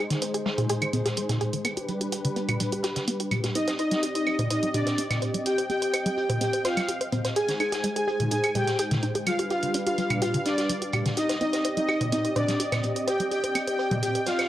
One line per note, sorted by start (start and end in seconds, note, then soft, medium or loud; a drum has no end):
0.00 1.63 G#3 medium
0.00 1.63 D#4 medium
0.00 1.63 G#4 medium
0.00 1.63 C5 medium
0.10 0.19 D#3 medium
0.10 snare soft
0.10 closed hi-hat soft
0.22 0.31 C4 medium
0.22 closed hi-hat medium
0.34 0.40 G#4 medium
0.34 closed hi-hat soft
0.46 0.49 G#3 medium
0.46 snare medium
0.46 closed hi-hat medium
0.58 0.64 G#4 medium
0.58 closed hi-hat soft
0.58 mid tom medium
0.69 0.73 G#4 loud
0.69 closed hi-hat medium
0.82 0.90 D#3 medium
0.82 closed hi-hat soft
0.82 claves soft
0.93 1.03 C4 medium
0.93 closed hi-hat soft
0.93 closed hi-hat medium
0.93 mid tom medium
1.06 1.11 G#4 medium
1.06 snare soft
1.06 closed hi-hat soft
1.16 1.21 G#3 medium
1.16 closed hi-hat medium
1.29 1.35 G#4 medium
1.29 snare soft
1.29 closed hi-hat soft
1.29 mid tom medium
1.41 1.45 G#4 medium
1.41 closed hi-hat medium
1.41 closed hi-hat soft
1.53 1.62 D#3 medium
1.53 closed hi-hat soft
1.65 3.53 G3 medium
1.65 1.74 B3 medium
1.65 3.53 D4 medium
1.65 7.32 G4 medium
1.65 3.53 B4 medium
1.65 closed hi-hat medium
1.65 claves soft
1.77 1.83 G4 medium
1.77 closed hi-hat soft
1.89 1.92 G3 medium
1.89 closed hi-hat medium
1.89 closed hi-hat soft
2.01 2.07 G4 medium
2.01 closed hi-hat soft
2.12 2.16 G4 medium
2.12 closed hi-hat medium
2.25 2.33 D3 medium
2.25 closed hi-hat soft
2.36 2.45 B3 medium
2.36 closed hi-hat soft
2.36 closed hi-hat medium
2.49 2.54 G4 medium
2.49 closed hi-hat soft
2.49 mid tom medium
2.49 claves soft
2.60 2.64 G3 medium
2.60 closed hi-hat medium
2.72 2.78 G4 medium
2.72 closed hi-hat soft
2.83 2.88 G4 loud
2.83 snare soft
2.83 closed hi-hat soft
2.83 closed hi-hat medium
2.96 3.05 D3 medium
2.96 snare soft
2.96 closed hi-hat soft
3.07 3.17 B3 medium
3.07 closed hi-hat medium
3.20 3.26 G4 medium
3.20 closed hi-hat soft
3.31 3.35 G3 medium
3.31 closed hi-hat medium
3.31 closed hi-hat soft
3.31 mid tom medium
3.31 claves soft
3.44 3.50 G4 medium
3.44 snare soft
3.44 closed hi-hat soft
3.55 7.32 C4 medium
3.55 3.59 C4 medium
3.55 3.73 D#4 medium
3.55 5.44 D5 medium
3.55 7.32 D#5 medium
3.55 3.73 D#5 loud
3.55 closed hi-hat medium
3.68 3.73 C5 medium
3.68 snare soft
3.68 closed hi-hat soft
3.78 4.05 D#4 medium
3.78 3.83 C5 medium
3.78 4.05 D#5 medium
3.78 closed hi-hat medium
3.78 closed hi-hat soft
3.91 4.00 G3 medium
3.91 snare soft
3.91 closed hi-hat soft
4.03 4.09 G4 medium
4.03 closed hi-hat medium
4.15 4.41 D#4 medium
4.15 4.21 C5 medium
4.15 4.41 D#5 medium
4.15 closed hi-hat soft
4.27 4.30 C4 medium
4.27 closed hi-hat medium
4.27 claves soft
4.39 4.45 C5 medium
4.39 closed hi-hat soft
4.39 mid tom medium
4.50 4.68 D#4 medium
4.50 4.54 C5 loud
4.50 4.68 D#5 medium
4.50 closed hi-hat medium
4.63 4.71 G3 medium
4.63 closed hi-hat soft
4.74 5.01 D4 medium
4.74 4.80 G4 medium
4.74 5.01 D5 medium
4.74 closed hi-hat soft
4.74 closed hi-hat medium
4.74 mid tom medium
4.87 4.92 C5 medium
4.87 snare soft
4.87 closed hi-hat soft
4.98 5.02 C4 medium
4.98 closed hi-hat medium
5.10 5.16 C5 medium
5.10 snare soft
5.10 closed hi-hat soft
5.10 mid tom medium
5.10 claves soft
5.22 5.26 C5 medium
5.22 closed hi-hat soft
5.22 closed hi-hat medium
5.34 5.43 G3 medium
5.34 closed hi-hat soft
5.46 5.63 G4 loud
5.46 5.52 G4 medium
5.46 9.23 C5 medium
5.46 5.63 G5 medium
5.46 closed hi-hat medium
5.58 5.64 C5 medium
5.58 closed hi-hat soft
5.69 5.73 C4 medium
5.69 5.96 G4 medium
5.69 5.96 G5 medium
5.69 closed hi-hat soft
5.69 closed hi-hat medium
5.82 5.88 C5 medium
5.82 closed hi-hat soft
5.93 5.97 C5 medium
5.93 closed hi-hat medium
5.93 claves soft
6.06 6.14 G3 medium
6.06 6.32 G4 medium
6.06 6.32 G5 medium
6.06 closed hi-hat soft
6.17 6.23 G4 medium
6.17 closed hi-hat medium
6.29 6.35 C5 medium
6.29 closed hi-hat soft
6.29 mid tom medium
6.41 6.45 C4 medium
6.41 6.59 G4 medium
6.41 6.59 G5 medium
6.41 closed hi-hat medium
6.53 6.59 C5 medium
6.53 closed hi-hat soft
6.64 6.91 F4 medium
6.64 6.68 C5 loud
6.64 6.91 F5 medium
6.64 snare soft
6.64 closed hi-hat soft
6.64 closed hi-hat medium
6.77 6.86 G3 medium
6.77 snare soft
6.77 closed hi-hat soft
6.77 claves soft
6.88 6.95 G4 medium
6.88 closed hi-hat medium
7.01 7.07 C5 medium
7.01 closed hi-hat soft
7.12 7.16 C4 medium
7.12 closed hi-hat medium
7.12 closed hi-hat soft
7.12 mid tom medium
7.24 7.30 C5 medium
7.24 snare medium
7.24 closed hi-hat soft
7.36 9.25 G#3 medium
7.36 9.25 D#4 medium
7.36 9.25 G#4 medium
7.36 7.54 G#4 loud
7.36 7.40 G#4 medium
7.36 7.54 G#5 medium
7.36 closed hi-hat medium
7.48 7.57 D#3 medium
7.48 snare medium
7.48 closed hi-hat soft
7.60 7.66 D#4 medium
7.60 7.86 G#4 medium
7.60 7.86 G#5 medium
7.60 closed hi-hat medium
7.60 closed hi-hat soft
7.60 claves soft
7.72 7.78 G#4 medium
7.72 snare soft
7.72 closed hi-hat soft
7.83 7.87 G#3 medium
7.83 closed hi-hat medium
7.96 8.22 G#4 medium
7.96 8.02 G#4 medium
7.96 8.22 G#5 medium
7.96 closed hi-hat soft
8.08 8.11 G#4 loud
8.08 closed hi-hat medium
8.20 8.28 D#3 medium
8.20 closed hi-hat soft
8.20 mid tom medium
8.31 8.38 D#4 medium
8.31 8.49 G#4 medium
8.31 8.49 G#5 medium
8.31 closed hi-hat medium
8.44 8.49 G#4 medium
8.44 closed hi-hat soft
8.44 claves medium
8.55 8.59 G#3 medium
8.55 8.81 G4 medium
8.55 8.81 G5 medium
8.55 closed hi-hat soft
8.55 closed hi-hat medium
8.55 mid tom medium
8.67 8.73 G#4 medium
8.67 snare medium
8.67 closed hi-hat soft
8.79 8.83 G#4 medium
8.79 closed hi-hat medium
8.91 9.00 D#3 medium
8.91 snare medium
8.91 closed hi-hat soft
8.91 mid tom medium
9.03 9.09 D#4 medium
9.03 closed hi-hat medium
9.03 closed hi-hat soft
9.15 9.21 G#4 medium
9.15 closed hi-hat soft
9.26 11.15 G3 medium
9.26 9.30 G3 medium
9.26 11.15 D4 medium
9.26 9.44 F4 medium
9.26 11.15 G4 medium
9.26 11.15 B4 medium
9.26 9.44 F5 loud
9.26 closed hi-hat medium
9.26 claves soft
9.39 9.45 G4 medium
9.39 closed hi-hat soft
9.50 9.77 F4 medium
9.50 9.54 G4 medium
9.50 9.77 F5 medium
9.50 closed hi-hat soft
9.50 closed hi-hat medium
9.63 9.71 D3 medium
9.63 closed hi-hat soft
9.74 9.80 D4 medium
9.74 closed hi-hat medium
9.86 10.13 F4 medium
9.86 9.92 G4 medium
9.86 10.13 F5 medium
9.86 closed hi-hat soft
9.98 10.02 G3 medium
9.98 closed hi-hat medium
9.98 closed hi-hat soft
10.10 10.16 G4 medium
10.10 closed hi-hat soft
10.10 mid tom medium
10.10 claves medium
10.22 10.39 F4 medium
10.22 10.26 G4 loud
10.22 10.40 F5 medium
10.22 closed hi-hat medium
10.34 10.43 D3 medium
10.34 closed hi-hat soft
10.45 10.72 D4 medium
10.45 10.52 D4 medium
10.45 10.72 D5 medium
10.45 snare soft
10.45 closed hi-hat medium
10.45 closed hi-hat soft
10.58 10.64 G4 medium
10.58 snare soft
10.58 closed hi-hat soft
10.69 10.73 G3 medium
10.69 closed hi-hat medium
10.82 10.88 G4 medium
10.82 closed hi-hat soft
10.92 10.97 G4 medium
10.92 closed hi-hat medium
10.92 closed hi-hat soft
10.92 mid tom medium
10.92 claves soft
11.05 11.14 D3 medium
11.05 snare soft
11.05 closed hi-hat soft
11.17 14.48 C4 medium
11.17 11.35 D#4 medium
11.17 14.48 G4 medium
11.17 11.23 G4 medium
11.17 14.48 D5 medium
11.17 14.48 D#5 medium
11.17 11.35 D#5 medium
11.17 closed hi-hat medium
11.29 11.35 C5 medium
11.29 snare soft
11.29 closed hi-hat soft
11.41 11.45 C4 medium
11.41 11.67 D#4 medium
11.41 11.67 D#5 medium
11.41 closed hi-hat medium
11.41 closed hi-hat soft
11.53 11.59 C5 medium
11.53 snare soft
11.53 closed hi-hat soft
11.64 11.68 C5 medium
11.64 closed hi-hat medium
11.77 11.86 G3 medium
11.77 12.03 D#4 medium
11.77 12.03 D#5 medium
11.77 closed hi-hat soft
11.89 11.95 G4 medium
11.89 closed hi-hat medium
11.89 claves soft
12.01 12.07 C5 medium
12.01 closed hi-hat soft
12.01 mid tom medium
12.12 12.16 C4 medium
12.12 12.30 D#4 medium
12.12 12.30 D#5 medium
12.12 closed hi-hat medium
12.25 12.30 C5 medium
12.25 closed hi-hat soft
12.36 12.62 D4 medium
12.36 12.40 C5 loud
12.36 12.62 D5 medium
12.36 closed hi-hat soft
12.36 closed hi-hat medium
12.36 mid tom medium
12.48 12.57 G3 medium
12.48 snare medium
12.48 closed hi-hat soft
12.60 12.66 G4 medium
12.60 closed hi-hat medium
12.72 12.78 C5 medium
12.72 snare medium
12.72 closed hi-hat soft
12.72 mid tom medium
12.72 claves soft
12.83 12.87 C4 medium
12.83 closed hi-hat medium
12.83 closed hi-hat soft
12.96 13.02 C5 medium
12.96 closed hi-hat soft
13.07 13.25 G4 loud
13.07 13.11 C5 loud
13.07 13.25 G5 medium
13.07 closed hi-hat medium
13.20 13.28 G3 medium
13.20 closed hi-hat soft
13.31 13.38 G4 medium
13.31 13.58 G4 medium
13.31 13.58 G5 loud
13.31 closed hi-hat soft
13.31 closed hi-hat medium
13.44 13.49 C5 medium
13.44 closed hi-hat soft
13.55 13.59 C4 medium
13.55 closed hi-hat medium
13.55 claves soft
13.67 13.94 G4 medium
13.67 13.73 C5 medium
13.67 13.94 G5 medium
13.67 closed hi-hat soft
13.79 13.83 C5 medium
13.79 closed hi-hat medium
13.91 14.00 G3 medium
13.91 closed hi-hat soft
13.91 mid tom medium
14.03 14.20 G4 medium
14.03 14.09 G4 medium
14.03 14.21 G5 medium
14.03 closed hi-hat medium
14.15 14.21 C5 medium
14.15 closed hi-hat soft
14.26 14.30 C4 medium
14.26 14.48 F4 medium
14.26 14.48 F5 medium
14.26 snare medium
14.26 closed hi-hat medium
14.26 closed hi-hat soft
14.39 14.45 C5 medium
14.39 snare medium
14.39 closed hi-hat soft
14.39 claves soft